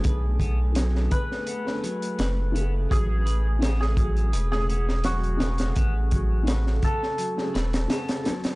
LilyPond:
<<
  \new Staff \with { instrumentName = "Santur" } { \time 4/4 \key a \major \tempo 4 = 84 r4. b'8. r4. r16 | gis'8 r8. gis'8 r8 gis'8. fis'8 r8 | r4. a'8. r4. r16 | }
  \new Staff \with { instrumentName = "Clean electric guitar" } { \time 4/4 \key a \major b'16 r16 b16 r16 fis8 b'16 r16 b16 r16 fis8 b'16 r16 b16 r16 | fis8 b'16 r16 b16 r16 fis8 b'16 r16 b16 r16 fis8 b'16 r16 | b16 r16 fis8 b'16 r16 b16 r16 fis8 b'16 r16 b16 r16 fis8 | }
  \new Staff \with { instrumentName = "String section" } { \time 4/4 \key a \major a1~ | a1~ | a1 | }
  \new Staff \with { instrumentName = "Upright piano" } { \time 4/4 \key a \major <d b a'>4 <d b a'>4~ <d b a'>16 <d b a'>16 r4 <cis a gis'>8~ | <cis a gis'>4 <cis a gis'>4~ <cis a gis'>16 <cis a gis'>16 r4 <cis a gis'>8~ | <cis a gis'>4 <cis a a'>4~ <cis a a'>16 <cis a gis'>16 r8 <cis a gis'>8 <d b a'>8 | }
  \new Staff \with { instrumentName = "Analog synth bass" } { \clef bass \time 4/4 \key a \major b,,4. r4. fis,,4 | a,,2 e,,2 | a,,4. r4 e,,8 r4 | }
  \new DrumStaff \with { instrumentName = "Drums" } \drummode { \time 4/4 <hh bd>8 <hh bd>8 <hh sn>16 sn16 <hh bd>16 sn16 hh16 sn16 hh16 hh16 <hh sn>8 hh8 | <hh bd>8 hh8 <hh sn>16 sn16 <hh bd>16 hh16 hh16 sn16 hh16 sn16 <hh sn>16 hh16 <hh sn>16 <hh sn>16 | <hh bd>8 <hh bd>8 <hh sn>16 sn16 <hh bd>16 sn16 hh16 sn16 <hh sn>16 <hh sn>16 <hh sn>16 <hh sn>16 <hh sn>16 <hh sn>16 | }
>>